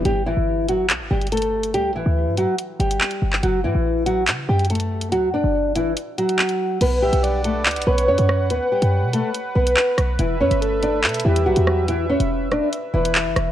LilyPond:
<<
  \new Staff \with { instrumentName = "Analog synth pad" } { \time 4/4 \key b \minor \tempo 4 = 142 << { r1 | r1 | r1 | r1 |
fis''1~ | fis''1 | e''1~ | e''1 | } \\ { r1 | r1 | r1 | r1 |
b'1~ | b'1~ | b'1~ | b'1 | } >> }
  \new Staff \with { instrumentName = "Soft synth lead" } { \time 4/4 \key b \minor r1 | r1 | r1 | r1 |
r8 e''8 d''4. cis''4. | r1 | r8 b'8 a'4. g'4. | r2 r8 b'8 r4 | }
  \new Staff \with { instrumentName = "Nylon-string guitar" } { \time 4/4 \key b \minor <g g'>8 <e e'>4 <fis fis'>8 r8 <g g'>8 <a a'>4 | <g g'>8 <e e'>4 <fis fis'>8 r8 <g g'>4. | <fis fis'>8 <e e'>4 <fis fis'>8 r8 <g g'>8 <a a'>4 | <fis fis'>8 <d' d''>4 <e e'>8 r8 <fis fis'>4. |
<b b'>8 <g g'>4 <a a'>8 r8 <b b'>8 <cis' cis''>4 | <b b'>8 <g g'>4 <a a'>8 r8 <b b'>4. | <e e'>8 <cis' cis''>4 <d' d''>8 r8 <e e'>8 <fis fis'>4 | <e e'>8 <cis' cis''>4 <d' d''>8 r8 <e e'>4. | }
  \new Staff \with { instrumentName = "808-style bass" } { \clef bass \time 4/4 \key b \minor g,,8. g,,4~ g,,16 b,,16 g,,16 g,,4. | d,16. g,,16. d,8 g,8 r8. g,,8 r8 g,,8 | fis,,8 a,16 a,,4~ a,,16 cis8 fis,4. | cis,16. fis,16. fis,,4~ fis,,16 r2 |
b,,8. b,,4~ b,,16 d,16 b,,16 b,,8 fis,16 fis,8. | d,16 r8 fis,8 b,8 r8. b,,8 r8 b,,8 | e,,8 g,16 g,,4~ g,,16 b,8 e,8 b,,16 e,8.~ | e,8. e,,4 r8. e,,8. fis,,16 e,,8 | }
  \new DrumStaff \with { instrumentName = "Drums" } \drummode { \time 4/4 hh4 r8 hh8 <hc hh>8. hh32 hh32 hh32 hh32 hh8 hh16 | hh4 r8 hh8 hh8 hh16 hh16 hc16 hh8 hc16 | hh4 r8 hh8 <hc hh>8. hh32 hh32 hh32 hh32 hh8 hh16 | hh4 r8 hh8 hh8 hh16 hh16 hc16 hh8. |
<cymc hh>8. hh16 hh8 hh8 <hc hh>32 hh32 hh32 hh16. hh16 r16 hh16 ss8 | hh8. hh16 r8 hh8 hh8. hh16 hc8 <hh ss>8 | hh8. hh16 hh8 hh8 <hc hh>32 hh32 hh32 hh16. hh16 r16 hh16 ss8 | hh8. hh16 r8 <hh ss>8 hh8. hh16 hc8 <hh ss>8 | }
>>